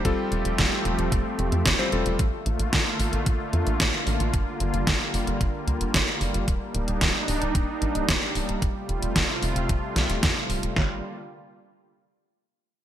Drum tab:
HH |x-xxx-xxx-xxx-xx|x-xxx-oxx-xxx-ox|x-xxx-oxx-xxx-ox|x-xxx-oxx-xxx-ox|
SD |----o-------o---|----o-------o---|----o-------o---|----o-------o---|
BD |o---o---o---o---|o---o---o---o---|o---o---o---o---|o---o---o---o---|

HH |x-xxx-oxx-xxx-ox|----------------|
SD |----o-----o-o---|o---------------|
BD |o---o---o---o---|o---------------|